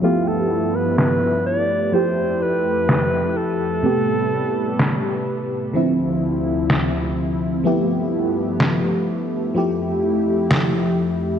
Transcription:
<<
  \new Staff \with { instrumentName = "Alto saxophone" } { \time 4/4 \key f \lydian \tempo 4 = 63 f'16 a'8 b'16 b'8 d''8 c''8 b'4 a'8~ | a'4. r2 r8 | r1 | }
  \new Staff \with { instrumentName = "FM electric piano" } { \time 4/4 \key f \lydian <f a b e' g'>2 <f a e' g'>2 | <c a b g'>2 <d f c' e'>2 | <f a b e' g'>2 <f a e' g'>2 | }
  \new Staff \with { instrumentName = "Analog synth pad" } { \time 4/4 \key f \lydian << { e'2 g'2 | b'2 e'2~ | e'2 g'2 | } \\ { <g, f a b>2 <f, e'>2 | <a, g>2 <d, c f>2 | <g, a b>2 <f, e'>2 | } >> }
  \new DrumStaff \with { instrumentName = "Drums" } \drummode { \time 4/4 r4 sn4 r4 sn4 | r4 sn4 r4 sn4 | r4 sn4 r4 sn4 | }
>>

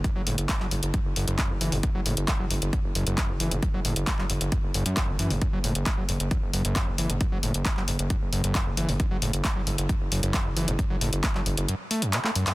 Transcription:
<<
  \new Staff \with { instrumentName = "Acid bass" } { \clef bass \time 4/4 \key fis \phrygian \tempo 4 = 134 fis,16 fis16 a,16 r16 a16 fis16 fis,16 r16 fis,16 r16 fis,16 fis,8 e,16 e16 g,16 | fis,16 fis16 a,16 r16 a16 fis16 fis,16 r16 fis,16 r16 fis,16 fis,8 e,16 e16 g,16 | fis,16 fis16 a,16 r16 a16 fis16 fis,16 r16 fis,16 r16 fis,16 fis,8 e,16 e16 g,16 | fis,16 fis16 a,16 r16 a16 fis16 fis,16 r16 fis,16 r16 fis,16 fis,8 e,16 e16 g,16 |
fis,16 fis16 a,16 r16 a16 fis16 fis,16 r16 fis,16 r16 fis,16 fis,8 e,16 e16 g,16 | fis,16 fis16 a,16 r16 a16 fis16 fis,16 r16 fis,16 r16 fis,16 fis,8 e,16 e16 g,16 | fis,16 fis16 a,16 r16 a16 fis16 fis,16 r16 fis,16 r16 a16 fis,16 b,16 a16 fis,16 fis,16 | }
  \new Staff \with { instrumentName = "Analog synth bass" } { \clef bass \time 4/4 \key fis \phrygian r16 fis,,16 fis,,16 fis,,16 r16 fis,,16 fis,,16 fis,,16 r16 fis,,16 fis,,16 fis,,16 r16 fis,,16 fis,,16 fis,,16 | r16 fis,,16 fis,,16 fis,,16 r16 fis,,16 fis,,16 fis,,16 r16 fis,,16 fis,,16 fis,,16 r16 fis,,16 fis,,16 fis,,16 | r16 fis,,16 fis,,16 fis,,16 r16 fis,,16 fis,,16 fis,,16 r16 fis,,16 fis,,16 fis,16 r16 g,,16 fis,16 fis,,16 | r16 fis,,16 fis,,16 fis,,16 r16 fis,,16 fis,,16 fis,,16 r16 fis,,16 fis,,16 fis,,16 r16 fis,,16 fis,,16 fis,,16 |
r16 fis,,16 fis,,16 fis,,16 r16 fis,,16 fis,,16 fis,,16 r16 fis,,16 fis,,16 fis,,16 r16 fis,,16 fis,,16 fis,,16 | r16 fis,,16 fis,,16 fis,,16 r16 fis,,16 fis,,16 fis,,16 r16 fis,,16 fis,,16 fis,,16 r16 fis,,16 fis,,16 fis,,16 | r16 fis,,16 fis,,16 fis,,16 r16 fis,,16 fis,,16 fis,,16 r2 | }
  \new DrumStaff \with { instrumentName = "Drums" } \drummode { \time 4/4 <hh bd>8 hho16 hh16 <hc hh bd>16 hc16 hho16 hh16 <hh bd>8 hho16 hh16 <hc hh bd>8 hho16 hho16 | <hh bd>8 hho16 hh16 <hc hh bd>8 hho16 hh16 <hh bd>8 hho16 hh16 <hc hh bd>8 hho16 hh16 | <hh bd>8 hho16 hh16 <hc hh bd>16 hc16 hho16 hh16 <hh bd>8 hho16 hh16 <hc hh bd>8 hho16 hho16 | <hh bd>8 hho16 hh16 <hc hh bd>8 hho16 hh16 <hh bd>8 hho16 hh16 <hc hh bd>8 hho16 hh16 |
<hh bd>8 hho16 hh16 <hc hh bd>16 hc16 hho16 hh16 <hh bd>8 hho16 hh16 <hc hh bd>8 hho16 hho16 | <hh bd>8 hho16 hh16 <hc hh bd>8 hho16 hh16 <hh bd>8 hho16 hh16 <hc hh bd>8 hho16 hh16 | <hh bd>8 hho16 hh16 <hc hh bd>16 hc16 hho16 hh16 hh8 hho16 hh16 <hc hh>16 hc16 hho16 <hc hho>16 | }
>>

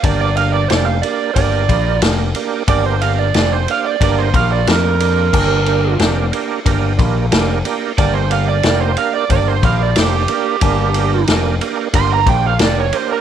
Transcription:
<<
  \new Staff \with { instrumentName = "Lead electric guitar" } { \time 4/4 \key g \minor \tempo 4 = 91 d''16 d''16 f''16 d''16 d''16 f''16 d''8 d''4 r4 | d''16 c''16 f''16 d''16 d''16 c''16 f''16 d''16 d''16 c''16 f''16 d''16 bes'4~ | bes'4 r2. | d''16 c''16 f''16 d''16 d''16 c''16 f''16 d''16 d''16 c''16 f''16 d''16 g'4~ |
g'4 r4 c'''16 bes''16 g''16 f''16 d''16 cis''16 c''16 bes'16 | }
  \new Staff \with { instrumentName = "Tonewheel organ" } { \time 4/4 \key g \minor <bes d' g' bes'>8 <bes d' g' bes'>8 <bes d' g' c''>8 <bes d' g' bes'>8 <bes d' g' bes'>8 <bes d' g' bes'>8 <bes d' g' bes'>8 <bes d' g' bes'>8 | <bes d' g' bes'>8 <bes d' g' bes'>8 <bes d' g' c''>8 <bes d' g' c''>8 <bes d' g' bes'>8 <bes d' g' bes'>8 <bes d' g' bes'>8 <bes d' g' bes'>8 | <bes d' g' bes'>8 <bes d' g' bes'>8 <bes d' g' bes'>8 <bes d' g' bes'>8 <bes d' g' bes'>8 <bes d' g' bes'>8 <bes d' g' bes'>8 <bes d' g' bes'>8 | <bes d' g' bes'>8 <bes d' g' bes'>8 <bes d' g' bes'>8 <bes d' g' bes'>8 <bes d' g' bes'>8 <bes d' g' bes'>8 <bes d' g' c''>8 <bes d' g' bes'>8 |
<bes d' g' bes'>8 <bes d' g' bes'>8 <bes d' g' bes'>8 <bes d' g' bes'>8 <bes d' g' bes'>8 <bes d' g' c''>8 <bes d' g' bes'>8 <bes d' g' bes'>8 | }
  \new Staff \with { instrumentName = "Picked electric bass" } { \clef bass \time 4/4 \key g \minor g,,4 f,,8 r8 g,,8 bes,,8 f,,8 r8 | g,,4 f,,8 r8 g,,8 bes,,8 f,4 | g,,4 f,,8 r8 g,,8 bes,,8 f,,8 r8 | g,,4 f,,8 r8 g,,8 bes,,8 f,,8 r8 |
g,,4 f,,8 r8 g,,8 bes,,8 f,,8 r8 | }
  \new DrumStaff \with { instrumentName = "Drums" } \drummode { \time 4/4 <bd cymr>8 cymr8 <cymr sn>8 cymr8 <bd cymr>8 <bd cymr>8 <cymr sn>8 cymr8 | <bd cymr>8 cymr8 <cymr sn>8 cymr8 <bd cymr>8 <bd cymr>8 <cymr sn>8 cymr8 | <cymc bd>8 cymr8 <cymr sn>8 cymr8 <bd cymr>8 <bd cymr>8 <cymr sn>8 cymr8 | <bd cymr>8 cymr8 <cymr sn>8 cymr8 <bd cymr>8 <bd cymr>8 <cymr sn>8 cymr8 |
<bd cymr>8 cymr8 <cymr sn>8 cymr8 <bd cymr>8 <bd cymr>8 <cymr sn>8 cymr8 | }
>>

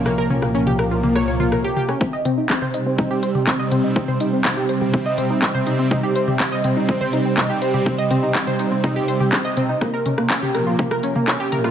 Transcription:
<<
  \new Staff \with { instrumentName = "Synth pluck" } { \time 4/4 \key c \phrygian \tempo 4 = 123 bes16 bes'16 des'16 bes16 des'16 g'16 bes'16 f'16 bes16 des''16 des''16 f'16 bes'16 g'16 g'16 des'16 | c'16 ees''16 c'16 ees'16 c'16 c''16 ees'16 c'16 ees'16 g'16 c''16 g'16 c'16 ees''16 c'16 ees'16 | c'16 c''16 ees'16 c'16 ees'16 g'16 c''16 g'16 c'16 ees''16 c'16 ees'16 c'16 c''16 ees'16 c'16 | ees'16 g'16 c''16 g'16 c'16 ees''16 c'16 ees'16 c'16 c''16 ees'16 c'16 ees'16 g'16 c''16 g'16 |
c'16 ees''16 c'16 ees'16 c'16 c''16 ees'16 c'16 ees'16 g'16 c''16 g'16 c'16 ees''16 c'16 ees'16 | bes16 bes'16 des'16 bes16 des'16 g'16 bes'16 f'16 bes16 bes'16 des'16 bes16 des'16 g'16 bes'16 f'16 | }
  \new Staff \with { instrumentName = "Analog synth pad" } { \clef bass \time 4/4 \key c \phrygian <c, bes, f bes>4. <c, bes, f bes>4. r4 | r4. <c g c'>4. <c g c'>4~ | <c g c'>4. <c g c'>4. <c g c'>4~ | <c g c'>4. <c g c'>4. <c g c'>4~ |
<c g c'>4. <c g c'>4. r4 | r4. <bes, f bes>8 r4. <bes, f bes>8 | }
  \new Staff \with { instrumentName = "Synth drone" } { \clef bass \time 4/4 \key c \phrygian c1 | c1~ | c1~ | c1~ |
c1~ | c1 | }
  \new DrumStaff \with { instrumentName = "Drums" } \drummode { \time 4/4 ss8 toml16 ss16 r16 toml16 ss8 toml16 ss8 toml16 ss8 toml16 ss16 | bd8 <hh toml>8 <hc bd>16 toml16 hh8 <bd toml>8 hh16 toml16 <hc bd>8 <hh toml>8 | bd16 toml16 hh8 <hc bd toml>8 hh16 toml16 bd8 <hh toml>8 <hc bd>16 toml16 hh8 | <bd toml>8 hh16 toml16 <hc bd>8 <hh toml>8 bd16 toml16 hh8 <hc bd toml>8 hh16 toml16 |
bd8 <hh toml>8 <hc bd>16 toml16 hh8 <bd toml>8 hh16 toml16 <hc bd>8 <hh toml>8 | <bd ss>8 <hh toml>16 ss16 <hc bd>16 toml16 <hh ss>8 <bd toml>16 ss16 hh16 toml16 <hc bd ss>8 <hh toml>16 ss16 | }
>>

